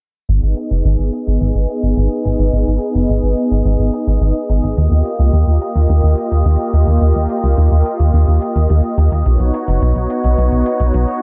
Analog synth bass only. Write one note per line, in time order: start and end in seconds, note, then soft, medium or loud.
0.29 0.40 G#1 loud
0.43 0.54 G#1 medium
0.71 0.82 F#1 medium
0.85 0.96 G#1 loud
0.99 1.10 G#1 medium
1.27 1.38 G#1 medium
1.41 1.52 G#1 loud
1.55 1.66 G#1 medium
1.83 1.94 G#1 medium
1.97 2.08 G#1 loud
2.25 2.37 G#1 medium
2.39 2.50 G#1 medium
2.53 2.64 G#1 loud
2.67 2.79 G#1 medium
2.95 3.07 F#1 medium
3.09 3.21 G#1 loud
3.23 3.35 G#1 medium
3.51 3.63 G#1 medium
3.65 3.77 G#1 loud
3.79 3.91 G#1 medium
4.07 4.19 G#1 medium
4.21 4.33 G#1 loud
4.49 4.61 G#1 medium
4.63 4.75 G#1 medium
4.77 4.89 D#2 loud
4.91 5.03 D#2 medium
5.19 5.31 C#2 medium
5.33 5.45 D#2 loud
5.47 5.59 D#2 medium
5.75 5.87 D#2 medium
5.89 6.01 D#2 loud
6.03 6.15 D#2 medium
6.32 6.43 D#2 medium
6.45 6.57 D#2 loud
6.73 6.85 D#2 medium
6.87 6.99 D#2 medium
7.02 7.13 D#2 loud
7.16 7.27 D#2 medium
7.44 7.55 C#2 medium
7.58 7.69 D#2 loud
7.72 7.83 D#2 medium
8.00 8.11 D#2 medium
8.14 8.25 D#2 loud
8.28 8.39 D#2 medium
8.56 8.67 D#2 medium
8.70 8.81 D#2 loud
8.98 9.09 D#2 medium
9.12 9.23 D#2 medium
9.26 9.37 B1 loud
9.40 9.51 B1 medium
9.68 9.79 F#1 medium
9.82 9.93 B1 loud
9.96 10.07 B1 medium
10.24 10.36 B1 medium
10.38 10.50 B1 loud
10.52 10.64 B1 medium
10.80 10.92 B1 medium
10.94 11.06 B1 loud